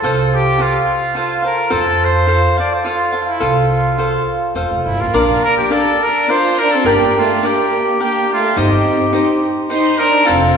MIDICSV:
0, 0, Header, 1, 5, 480
1, 0, Start_track
1, 0, Key_signature, -1, "major"
1, 0, Tempo, 564440
1, 29, Time_signature, 3, 2, 24, 8
1, 2909, Tempo, 571973
1, 4354, Key_signature, -2, "major"
1, 8909, End_track
2, 0, Start_track
2, 0, Title_t, "Cavaquinho"
2, 0, Program_c, 0, 24
2, 28, Note_on_c, 0, 65, 75
2, 33, Note_on_c, 0, 69, 72
2, 36, Note_on_c, 0, 72, 88
2, 37, Note_on_c, 0, 77, 80
2, 489, Note_off_c, 0, 65, 0
2, 492, Note_off_c, 0, 69, 0
2, 492, Note_on_c, 0, 65, 53
2, 495, Note_off_c, 0, 72, 0
2, 502, Note_off_c, 0, 77, 0
2, 502, Note_on_c, 0, 69, 62
2, 505, Note_on_c, 0, 77, 60
2, 506, Note_on_c, 0, 72, 61
2, 966, Note_off_c, 0, 69, 0
2, 972, Note_off_c, 0, 65, 0
2, 975, Note_on_c, 0, 65, 43
2, 976, Note_on_c, 0, 69, 57
2, 977, Note_off_c, 0, 72, 0
2, 987, Note_on_c, 0, 72, 63
2, 988, Note_off_c, 0, 77, 0
2, 991, Note_on_c, 0, 77, 64
2, 1200, Note_off_c, 0, 77, 0
2, 1210, Note_on_c, 0, 77, 45
2, 1212, Note_off_c, 0, 72, 0
2, 1220, Note_off_c, 0, 69, 0
2, 1222, Note_on_c, 0, 72, 43
2, 1230, Note_on_c, 0, 69, 34
2, 1234, Note_off_c, 0, 65, 0
2, 1438, Note_off_c, 0, 69, 0
2, 1440, Note_off_c, 0, 72, 0
2, 1440, Note_off_c, 0, 77, 0
2, 1447, Note_on_c, 0, 65, 85
2, 1448, Note_on_c, 0, 69, 85
2, 1450, Note_on_c, 0, 72, 92
2, 1451, Note_on_c, 0, 77, 92
2, 1926, Note_off_c, 0, 65, 0
2, 1928, Note_off_c, 0, 69, 0
2, 1930, Note_on_c, 0, 65, 59
2, 1931, Note_off_c, 0, 72, 0
2, 1939, Note_on_c, 0, 69, 66
2, 1941, Note_on_c, 0, 72, 66
2, 1943, Note_off_c, 0, 77, 0
2, 1946, Note_on_c, 0, 77, 60
2, 2182, Note_off_c, 0, 77, 0
2, 2186, Note_off_c, 0, 72, 0
2, 2191, Note_off_c, 0, 65, 0
2, 2192, Note_on_c, 0, 77, 49
2, 2195, Note_off_c, 0, 69, 0
2, 2197, Note_on_c, 0, 72, 42
2, 2206, Note_on_c, 0, 69, 36
2, 2413, Note_off_c, 0, 69, 0
2, 2418, Note_on_c, 0, 65, 54
2, 2420, Note_off_c, 0, 72, 0
2, 2423, Note_off_c, 0, 77, 0
2, 2423, Note_on_c, 0, 69, 57
2, 2431, Note_on_c, 0, 72, 57
2, 2435, Note_on_c, 0, 77, 62
2, 2647, Note_off_c, 0, 77, 0
2, 2651, Note_off_c, 0, 72, 0
2, 2657, Note_on_c, 0, 77, 42
2, 2660, Note_off_c, 0, 69, 0
2, 2661, Note_on_c, 0, 72, 44
2, 2670, Note_on_c, 0, 69, 36
2, 2676, Note_off_c, 0, 65, 0
2, 2883, Note_off_c, 0, 69, 0
2, 2885, Note_off_c, 0, 72, 0
2, 2893, Note_off_c, 0, 77, 0
2, 2893, Note_on_c, 0, 69, 78
2, 2895, Note_on_c, 0, 72, 71
2, 2898, Note_on_c, 0, 65, 76
2, 2903, Note_on_c, 0, 77, 76
2, 3374, Note_off_c, 0, 69, 0
2, 3375, Note_off_c, 0, 65, 0
2, 3375, Note_off_c, 0, 72, 0
2, 3378, Note_on_c, 0, 65, 58
2, 3382, Note_off_c, 0, 77, 0
2, 3384, Note_on_c, 0, 69, 64
2, 3385, Note_on_c, 0, 72, 49
2, 3385, Note_on_c, 0, 77, 61
2, 3851, Note_off_c, 0, 72, 0
2, 3853, Note_off_c, 0, 69, 0
2, 3854, Note_off_c, 0, 65, 0
2, 3857, Note_on_c, 0, 65, 49
2, 3861, Note_on_c, 0, 72, 56
2, 3864, Note_on_c, 0, 69, 62
2, 3869, Note_off_c, 0, 77, 0
2, 3873, Note_on_c, 0, 77, 63
2, 4345, Note_off_c, 0, 77, 0
2, 4346, Note_off_c, 0, 65, 0
2, 4348, Note_off_c, 0, 69, 0
2, 4349, Note_off_c, 0, 72, 0
2, 4350, Note_on_c, 0, 62, 85
2, 4352, Note_on_c, 0, 70, 75
2, 4352, Note_on_c, 0, 74, 88
2, 4355, Note_on_c, 0, 77, 92
2, 4817, Note_off_c, 0, 62, 0
2, 4821, Note_on_c, 0, 62, 59
2, 4824, Note_off_c, 0, 70, 0
2, 4827, Note_off_c, 0, 77, 0
2, 4827, Note_on_c, 0, 70, 61
2, 4830, Note_off_c, 0, 74, 0
2, 4833, Note_on_c, 0, 74, 60
2, 4837, Note_on_c, 0, 77, 69
2, 5304, Note_off_c, 0, 62, 0
2, 5307, Note_on_c, 0, 62, 63
2, 5310, Note_off_c, 0, 77, 0
2, 5311, Note_off_c, 0, 70, 0
2, 5314, Note_off_c, 0, 74, 0
2, 5315, Note_on_c, 0, 70, 61
2, 5318, Note_on_c, 0, 74, 56
2, 5320, Note_on_c, 0, 77, 53
2, 5781, Note_off_c, 0, 70, 0
2, 5782, Note_off_c, 0, 62, 0
2, 5788, Note_off_c, 0, 74, 0
2, 5791, Note_on_c, 0, 70, 91
2, 5792, Note_off_c, 0, 77, 0
2, 5792, Note_on_c, 0, 62, 91
2, 5795, Note_on_c, 0, 79, 90
2, 5798, Note_on_c, 0, 74, 91
2, 6262, Note_off_c, 0, 62, 0
2, 6266, Note_off_c, 0, 70, 0
2, 6271, Note_off_c, 0, 74, 0
2, 6272, Note_on_c, 0, 62, 59
2, 6276, Note_on_c, 0, 70, 67
2, 6280, Note_off_c, 0, 79, 0
2, 6281, Note_on_c, 0, 74, 68
2, 6283, Note_on_c, 0, 79, 70
2, 6738, Note_off_c, 0, 62, 0
2, 6745, Note_off_c, 0, 70, 0
2, 6747, Note_off_c, 0, 74, 0
2, 6748, Note_on_c, 0, 62, 51
2, 6755, Note_on_c, 0, 70, 71
2, 6757, Note_on_c, 0, 74, 57
2, 6761, Note_off_c, 0, 79, 0
2, 6765, Note_on_c, 0, 79, 57
2, 7221, Note_off_c, 0, 70, 0
2, 7224, Note_on_c, 0, 67, 86
2, 7225, Note_off_c, 0, 62, 0
2, 7226, Note_off_c, 0, 74, 0
2, 7228, Note_on_c, 0, 63, 87
2, 7229, Note_on_c, 0, 72, 76
2, 7230, Note_off_c, 0, 79, 0
2, 7233, Note_on_c, 0, 75, 103
2, 7687, Note_off_c, 0, 63, 0
2, 7692, Note_off_c, 0, 67, 0
2, 7697, Note_on_c, 0, 63, 73
2, 7698, Note_off_c, 0, 75, 0
2, 7702, Note_on_c, 0, 67, 58
2, 7705, Note_off_c, 0, 72, 0
2, 7708, Note_on_c, 0, 72, 69
2, 7708, Note_on_c, 0, 75, 67
2, 8167, Note_off_c, 0, 67, 0
2, 8168, Note_off_c, 0, 63, 0
2, 8173, Note_off_c, 0, 75, 0
2, 8177, Note_on_c, 0, 67, 56
2, 8178, Note_on_c, 0, 63, 53
2, 8182, Note_off_c, 0, 72, 0
2, 8183, Note_on_c, 0, 75, 62
2, 8186, Note_on_c, 0, 72, 66
2, 8417, Note_off_c, 0, 75, 0
2, 8422, Note_off_c, 0, 72, 0
2, 8427, Note_on_c, 0, 75, 45
2, 8428, Note_off_c, 0, 67, 0
2, 8432, Note_on_c, 0, 72, 47
2, 8435, Note_off_c, 0, 63, 0
2, 8438, Note_on_c, 0, 67, 36
2, 8636, Note_off_c, 0, 72, 0
2, 8637, Note_off_c, 0, 67, 0
2, 8640, Note_on_c, 0, 69, 81
2, 8641, Note_on_c, 0, 65, 78
2, 8646, Note_on_c, 0, 72, 89
2, 8649, Note_off_c, 0, 75, 0
2, 8652, Note_on_c, 0, 77, 98
2, 8909, Note_off_c, 0, 65, 0
2, 8909, Note_off_c, 0, 69, 0
2, 8909, Note_off_c, 0, 72, 0
2, 8909, Note_off_c, 0, 77, 0
2, 8909, End_track
3, 0, Start_track
3, 0, Title_t, "Trumpet"
3, 0, Program_c, 1, 56
3, 25, Note_on_c, 1, 69, 84
3, 293, Note_on_c, 1, 67, 98
3, 306, Note_off_c, 1, 69, 0
3, 525, Note_on_c, 1, 65, 88
3, 537, Note_off_c, 1, 67, 0
3, 993, Note_off_c, 1, 65, 0
3, 998, Note_on_c, 1, 65, 85
3, 1228, Note_off_c, 1, 65, 0
3, 1238, Note_on_c, 1, 70, 90
3, 1468, Note_on_c, 1, 69, 95
3, 1481, Note_off_c, 1, 70, 0
3, 1741, Note_on_c, 1, 72, 111
3, 1754, Note_off_c, 1, 69, 0
3, 2203, Note_off_c, 1, 72, 0
3, 2208, Note_on_c, 1, 74, 81
3, 2327, Note_on_c, 1, 72, 78
3, 2340, Note_off_c, 1, 74, 0
3, 2430, Note_off_c, 1, 72, 0
3, 2435, Note_on_c, 1, 65, 82
3, 2751, Note_off_c, 1, 65, 0
3, 2751, Note_on_c, 1, 65, 62
3, 2793, Note_on_c, 1, 64, 75
3, 2806, Note_off_c, 1, 65, 0
3, 2922, Note_on_c, 1, 65, 73
3, 2935, Note_off_c, 1, 64, 0
3, 3877, Note_off_c, 1, 65, 0
3, 4081, Note_on_c, 1, 65, 57
3, 4114, Note_on_c, 1, 64, 84
3, 4126, Note_off_c, 1, 65, 0
3, 4238, Note_on_c, 1, 65, 86
3, 4250, Note_off_c, 1, 64, 0
3, 4600, Note_on_c, 1, 70, 114
3, 4612, Note_off_c, 1, 65, 0
3, 4708, Note_off_c, 1, 70, 0
3, 4713, Note_on_c, 1, 67, 82
3, 4837, Note_on_c, 1, 69, 97
3, 4850, Note_off_c, 1, 67, 0
3, 5102, Note_on_c, 1, 70, 97
3, 5115, Note_off_c, 1, 69, 0
3, 5325, Note_on_c, 1, 72, 98
3, 5337, Note_off_c, 1, 70, 0
3, 5566, Note_on_c, 1, 70, 102
3, 5579, Note_off_c, 1, 72, 0
3, 5675, Note_on_c, 1, 69, 95
3, 5688, Note_off_c, 1, 70, 0
3, 5797, Note_on_c, 1, 67, 85
3, 5810, Note_off_c, 1, 69, 0
3, 6050, Note_off_c, 1, 67, 0
3, 6062, Note_on_c, 1, 65, 84
3, 6296, Note_on_c, 1, 67, 89
3, 6309, Note_off_c, 1, 65, 0
3, 6764, Note_off_c, 1, 67, 0
3, 6773, Note_on_c, 1, 67, 87
3, 6999, Note_off_c, 1, 67, 0
3, 7029, Note_on_c, 1, 65, 96
3, 7228, Note_off_c, 1, 65, 0
3, 7247, Note_on_c, 1, 67, 79
3, 7951, Note_off_c, 1, 67, 0
3, 8175, Note_on_c, 1, 72, 94
3, 8416, Note_on_c, 1, 70, 113
3, 8429, Note_off_c, 1, 72, 0
3, 8653, Note_on_c, 1, 69, 92
3, 8666, Note_off_c, 1, 70, 0
3, 8909, Note_off_c, 1, 69, 0
3, 8909, End_track
4, 0, Start_track
4, 0, Title_t, "Violin section"
4, 0, Program_c, 2, 48
4, 4090, Note_on_c, 2, 57, 45
4, 4122, Note_off_c, 2, 57, 0
4, 4140, Note_on_c, 2, 55, 70
4, 4243, Note_on_c, 2, 58, 73
4, 4248, Note_off_c, 2, 55, 0
4, 4601, Note_on_c, 2, 62, 79
4, 4610, Note_off_c, 2, 58, 0
4, 4719, Note_off_c, 2, 62, 0
4, 4725, Note_on_c, 2, 58, 64
4, 4830, Note_off_c, 2, 58, 0
4, 4834, Note_on_c, 2, 62, 61
4, 5080, Note_off_c, 2, 62, 0
4, 5090, Note_on_c, 2, 62, 75
4, 5316, Note_on_c, 2, 65, 83
4, 5317, Note_off_c, 2, 62, 0
4, 5570, Note_off_c, 2, 65, 0
4, 5572, Note_on_c, 2, 62, 95
4, 5685, Note_off_c, 2, 62, 0
4, 5701, Note_on_c, 2, 60, 89
4, 5799, Note_on_c, 2, 58, 77
4, 5806, Note_off_c, 2, 60, 0
4, 6052, Note_off_c, 2, 58, 0
4, 6063, Note_on_c, 2, 57, 83
4, 6268, Note_off_c, 2, 57, 0
4, 6286, Note_on_c, 2, 58, 71
4, 6759, Note_off_c, 2, 58, 0
4, 6782, Note_on_c, 2, 58, 64
4, 7003, Note_off_c, 2, 58, 0
4, 7029, Note_on_c, 2, 57, 75
4, 7228, Note_off_c, 2, 57, 0
4, 7256, Note_on_c, 2, 60, 60
4, 7955, Note_off_c, 2, 60, 0
4, 8188, Note_on_c, 2, 63, 82
4, 8422, Note_off_c, 2, 63, 0
4, 8441, Note_on_c, 2, 62, 85
4, 8664, Note_on_c, 2, 60, 79
4, 8668, Note_off_c, 2, 62, 0
4, 8909, Note_off_c, 2, 60, 0
4, 8909, End_track
5, 0, Start_track
5, 0, Title_t, "Upright bass"
5, 0, Program_c, 3, 32
5, 19, Note_on_c, 3, 36, 75
5, 646, Note_off_c, 3, 36, 0
5, 1461, Note_on_c, 3, 41, 88
5, 2087, Note_off_c, 3, 41, 0
5, 2897, Note_on_c, 3, 36, 78
5, 3526, Note_off_c, 3, 36, 0
5, 3852, Note_on_c, 3, 28, 62
5, 3976, Note_off_c, 3, 28, 0
5, 3986, Note_on_c, 3, 29, 67
5, 4106, Note_off_c, 3, 29, 0
5, 4110, Note_on_c, 3, 31, 70
5, 4220, Note_off_c, 3, 31, 0
5, 4233, Note_on_c, 3, 33, 76
5, 4339, Note_off_c, 3, 33, 0
5, 4348, Note_on_c, 3, 34, 94
5, 4515, Note_off_c, 3, 34, 0
5, 5781, Note_on_c, 3, 31, 88
5, 5951, Note_off_c, 3, 31, 0
5, 7225, Note_on_c, 3, 31, 99
5, 7391, Note_off_c, 3, 31, 0
5, 8674, Note_on_c, 3, 29, 78
5, 8836, Note_off_c, 3, 29, 0
5, 8909, End_track
0, 0, End_of_file